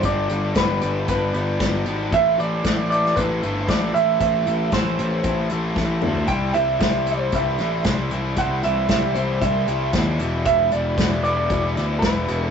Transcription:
0.03 picked electric bass G1, overdriven electric guitar G2 D3 G3 B3 D4 G4, clean electric guitar D5, kick, closed hi-hat
0.29 picked electric bass G1, overdriven electric guitar G3 B3 D4 G4, closed hi-hat
0.55 picked electric bass G1, overdriven electric guitar G3 B3 D4 G4, clean electric guitar B4, kick, snare, closed hi-hat
0.81 picked electric bass G1, overdriven electric guitar G2 D3 G3 B3 D4 G4, closed hi-hat
1.07 picked electric bass G1, overdriven electric guitar G3 B3 D4 G4, clean electric guitar B4, kick, closed hi-hat
1.33 picked electric bass G1, overdriven electric guitar G2 D3 G3 B3 D4 G4, closed hi-hat
1.59 picked electric bass G1, overdriven electric guitar G3 B3 D4 G4, kick, snare, closed hi-hat
1.86 picked electric bass G#1, overdriven electric guitar G3 B3 D4 G4, closed hi-hat
2.12 picked electric bass A1, overdriven electric guitar A2 E3 A3 C4 E4, clean electric guitar E5, kick, closed hi-hat
2.38 picked electric bass A1, overdriven electric guitar A3 C4 E4, clean electric guitar D5, closed hi-hat
2.64 picked electric bass A1, overdriven electric guitar E3 A3 C4 E4, kick, snare, closed hi-hat
2.89 overdriven electric guitar A2 E3 A3 C4 E4, clean electric guitar D5, closed hi-hat
3.06 snare
3.16 picked electric bass A1, overdriven electric guitar E3 A3 C4 E4, clean electric guitar B4, kick, closed hi-hat
3.42 picked electric bass G1, overdriven electric guitar A2 E3 A3 C4 E4, closed hi-hat
3.68 picked electric bass A1, overdriven electric guitar E3 A3 C4 E4, clean electric guitar D5, kick, snare, closed hi-hat
3.94 picked electric bass A1, overdriven electric guitar A3 C4 E4, clean electric guitar E5, closed hi-hat
4.20 picked electric bass A1, overdriven electric guitar A2 E3 A3 C4 E4, clean electric guitar E5, kick, closed hi-hat
4.46 picked electric bass A1, overdriven electric guitar A3 C4 E4, closed hi-hat
4.72 picked electric bass A1, overdriven electric guitar E3 A3 C4 E4, clean electric guitar C5, kick, snare, closed hi-hat
4.98 picked electric bass A1, overdriven electric guitar A2 E3 A3 C4 E4, closed hi-hat
5.24 picked electric bass A1, overdriven electric guitar E3 A3 C4 E4, kick, closed hi-hat
5.50 picked electric bass A1, overdriven electric guitar A2 E3 A3 C4 E4, closed hi-hat
5.76 picked electric bass A1, overdriven electric guitar E3 A3 C4 E4, kick, snare
6.02 picked electric bass D2, overdriven electric guitar A3 C4 E4, mid tom
6.15 floor tom
6.27 picked electric bass C2, overdriven electric guitar C3 E3 G3 C4 E4, clean electric guitar G5, kick, closed hi-hat
6.54 picked electric bass C2, overdriven electric guitar G3 C4 E4, clean electric guitar E5, closed hi-hat
6.80 picked electric bass C2, overdriven electric guitar E3 G3 C4 E4, clean electric guitar E5, kick, snare, closed hi-hat
7.06 overdriven electric guitar C3 E3 G3 C4 E4, clean electric guitar C5, closed hi-hat
7.32 picked electric bass C2, overdriven electric guitar E3 G3 C4 E4, clean electric guitar E5, kick, closed hi-hat
7.58 picked electric bass A1, overdriven electric guitar C3 E3 G3 C4 E4, snare, closed hi-hat
7.84 picked electric bass C2, overdriven electric guitar E3 G3 C4 E4, kick, snare, closed hi-hat
8.11 picked electric bass C2, overdriven electric guitar G3 C4 E4, closed hi-hat
8.36 picked electric bass C2, overdriven electric guitar C3 E3 G3 C4 E4, clean electric guitar F#5, kick, closed hi-hat
8.63 picked electric bass C2, overdriven electric guitar G3 C4 E4, clean electric guitar E5, closed hi-hat
8.89 picked electric bass C2, overdriven electric guitar E3 G3 C4 E4, clean electric guitar E5, kick, snare, closed hi-hat
9.15 picked electric bass C2, overdriven electric guitar C3 E3 G3 C4 E4, clean electric guitar C5, closed hi-hat
9.42 picked electric bass C2, overdriven electric guitar E3 G3 C4 E4, clean electric guitar E5, kick, closed hi-hat
9.67 picked electric bass C2, overdriven electric guitar C3 E3 G3 C4 E4, closed hi-hat
9.93 picked electric bass D#2, overdriven electric guitar E3 G3 C4 E4, kick, snare, closed hi-hat
10.19 picked electric bass E1, overdriven electric guitar E2 B2 E3 G3 B3 E4, closed hi-hat
10.45 picked electric bass E1, overdriven electric guitar E2 B2 E3 G3 B3 E4, clean electric guitar E5, kick, closed hi-hat
10.71 picked electric bass E1, overdriven electric guitar E3 G3 B3 E4, clean electric guitar D5, closed hi-hat
10.98 picked electric bass E1, overdriven electric guitar E3 G3 B3 E4, kick, snare, closed hi-hat
11.23 overdriven electric guitar E2 B2 E3 G3 B3 E4, clean electric guitar D5, closed hi-hat
11.50 picked electric bass E1, overdriven electric guitar E3 G3 B3 E4, kick, closed hi-hat
11.75 picked electric bass D2, overdriven electric guitar E2 B2 E3 G3 B3 E4, snare, closed hi-hat
11.99 picked electric bass E1, overdriven electric guitar E3 G3, clean electric guitar B4, kick, closed hi-hat
12.03 overdriven electric guitar B3 E4, snare
12.28 picked electric bass E1, overdriven electric guitar E3 G3 B3 E4, closed hi-hat
12.44 clean electric guitar A4

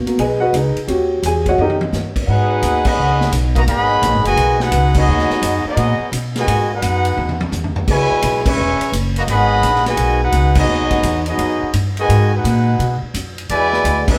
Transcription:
0.06 upright piano A#3 B3 F#4, muted upright bass stroke, ride
0.18 upright bass B1, upright piano G#4 B4 D#5 G#5, kick, ride
0.40 upright piano F#4 B4 D#5 F#5
0.53 upright bass C#2, upright piano D#4 G#4 B4 D#5, kick, hi-hat pedal, ride
0.75 muted upright bass stroke, ride
0.87 upright bass D#2, upright piano C#4 F#4 G4, kick, ride
1.23 upright bass E2, upright piano G#5, kick, hi-hat pedal, ride
1.27 upright piano G#4
1.46 upright piano F#4 C#5 D#5 F#5, kick, ride
1.58 upright bass F#2, upright piano D#4 G4 A#4 D#5, high tom
1.70 high tom
1.81 high tom
1.92 upright bass G2, snare, hi-hat pedal
2.16 kick, crash
2.26 upright bass G#2, trombone section B3 D#4 F#4, trumpet section D#4 G#4 B4 F5 F#5, kick
2.62 upright bass D#2, kick, hi-hat pedal, ride
2.85 trombone section D#3 F#3 B3, trumpet section G#4 D#5 F#5 B5, kick, crash
2.97 upright bass C#2
3.21 snare
3.32 upright bass B1, kick, hi-hat pedal, ride
3.55 trombone section A#3, trumpet section F#4 B4 D#5 A#5, kick, ride
3.66 upright bass G#1, trombone section D#3 F#3 B3, trumpet section G#4 D#5 F#5 B5, kick, ride
4.02 upright bass A#1, kick, hi-hat pedal, ride
4.14 upright bass G#1
4.23 upright bass F#1, trombone section B2 D#3 G#3, trumpet section F#4 B4 D#5 G#5, ride
4.37 upright bass B1, kick, ride
4.59 trombone section B3 D#4 F#4, trumpet section D#4 G#4 B4 F#5, snare
4.71 upright bass C#2, kick, hi-hat pedal, ride
4.94 trombone section F#3 B3 D#4, trumpet section B3 F#4 G#4 D#5, kick, crash
5.08 upright bass D#2
5.18 snare
5.30 muted upright bass stroke, snare
5.42 upright bass F#2, kick, hi-hat pedal, ride
5.65 trombone section F#3 B3 D#4, trumpet section B3 F#4 G#4 D#5, muted upright bass stroke
5.76 upright bass A#2, kick, ride
5.99 muted upright bass stroke
6.12 upright bass B2, kick, hi-hat pedal, ride
6.35 trombone section B2 D#3 G#3, trumpet section F#4 B4 D#5 G#5, snare, ride
6.47 upright bass G#2, kick, ride
6.70 trombone section B3 D#4 F#4, trumpet section D#4 B4 F#5
6.75 trumpet section G#4
6.82 upright bass F#2, kick, hi-hat pedal, ride
7.05 ride
7.17 upright bass E2, high tom
7.29 high tom
7.41 high tom
7.52 upright bass D#2, floor tom, hi-hat pedal
7.64 floor tom
7.76 floor tom
7.87 upright bass C#2, trombone section B2 E3 G#3, trumpet section E4 B4 C#5 G#5, kick, crash
8.11 muted upright bass stroke
8.22 upright bass B1, kick, hi-hat pedal, ride
8.46 trombone section E3 G#3 C#4, trumpet section B4 E5 G#5 C#6, kick, crash
8.57 upright bass E1
8.80 muted upright bass stroke, ride
8.92 upright bass F#1, kick, hi-hat pedal, ride
9.16 trombone section A#3, trumpet section F#4 B4 D#5 A#5, ride
9.27 upright bass G#1, trombone section D#3 F#3 B3, trumpet section G#4 D#5 F#5 B5, kick, ride
9.62 upright bass A#1, kick, hi-hat pedal, ride
9.75 snare
9.86 trombone section B2 D#3 G#3, trumpet section F#4 B4 D#5 G#5, snare, ride
9.97 upright bass B1, kick, ride
10.23 trombone section B3 D#4 F#4, trumpet section D#4 G#4 B4 F#5
10.32 upright bass C#2, kick, hi-hat pedal, ride
10.55 trombone section F#3 B3 D#4, trumpet section B3 F#4 G#4 D#5, kick, crash
10.68 upright bass D#2
10.80 upright bass B1
10.91 upright bass G#1, kick, ride
11.03 upright bass E2, kick, hi-hat pedal, ride
11.26 trombone section F#3 B3 D#4, trumpet section B3 F#4 G#4 D#5, ride
11.38 upright bass F#2, kick, ride
11.62 muted upright bass stroke
11.73 upright bass G2, kick, hi-hat pedal, ride
11.97 trombone section B2 D#3 G#3, trumpet section F#4 B4 D#5 G#5, ride
12.09 upright bass G#2, kick, ride
12.33 trombone section G#3 D#4 F#4, trumpet section D#4 G#4 B4 F#5
12.44 upright bass A#2, kick, hi-hat pedal, ride
12.79 upright bass B2, kick, ride
13.02 muted upright bass stroke
13.14 upright bass F#2, kick, hi-hat pedal, ride
13.38 ride
13.49 upright bass E2, trombone section B2 D3 G#3, trumpet section E4 B4 D5 G#5, kick, ride
13.73 snare
13.84 upright bass D2, kick, hi-hat pedal, ride
14.08 trombone section G#3 B3 E4, trumpet section D4 G#4 B4 E5, kick, crash

